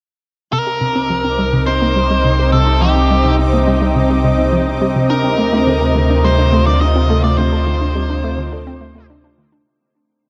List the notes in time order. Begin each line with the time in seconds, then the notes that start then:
0.53 C2 C3 C4 D#4 A#4 D6
0.67 G4
0.81 C3 C4 D4
0.96 C4 D#4
1.10 F3
1.24 C4 G4
1.39 G3 C5
1.53 C3 D#5
1.59 D#4
1.67 C4 C5
1.82 A#3 D4
1.96 G3 C4
2.10 G3
2.25 C3 D4
2.39 D#4 G4
2.52 C3 A4
2.67 C4 G4
2.82 F3 G4 C5
2.96 C4
3.10 G3 C4
3.24 C3 D4
3.39 C4
3.53 A#3
3.67 G3 D4
3.82 G3 D#4
3.96 C3
4.10 G4
4.24 C3 C5
4.39 C4
4.53 F3 C4
4.67 C4 D4
4.82 G3 C4
4.96 C3
5.10 D2 C3 C4 D4 A#4
5.24 C4 D4
5.38 A3
5.53 A3 F4
5.67 D3 A4
5.81 A4
5.96 D3 A3
6.02 F4
6.10 C4 D4
6.24 G3 A3 C5
6.39 D4
6.53 A3 C4
6.67 D3 D4 D5
6.81 D4 D#5
6.96 C4 F4
7.10 A3 A4
7.24 A3 D5
7.38 D3 A3 C5
7.52 C4 A4
7.67 D3 A3
7.81 D4
7.95 G3 C4
8.10 D4
8.24 A3
8.38 D3 F4
8.52 D4 A4
8.67 C4
8.81 A3 C5
8.95 A3 C4
9.10 D4
9.24 D4
9.38 D3 A3
9.52 A3 D4